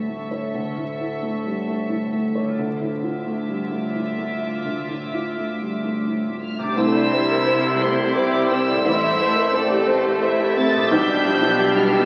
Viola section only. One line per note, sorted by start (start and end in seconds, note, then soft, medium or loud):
0.00 2.54 A4 soft
2.58 6.53 F4 medium
6.78 7.10 A3 medium
6.78 7.43 C4 medium
7.12 7.45 G3 medium
7.47 7.80 G3 medium
7.47 8.83 E4 medium
7.81 8.15 A3 medium
8.15 8.83 G3 medium
8.84 9.18 G3 medium
8.84 9.52 E4 medium
9.19 9.53 A3 medium
9.54 10.88 A3 loud
9.54 10.22 C4 medium
10.23 10.90 C4 medium
10.91 11.25 G3 loud
10.91 12.05 D4 loud
11.25 11.59 F3 loud
11.59 12.05 G3 medium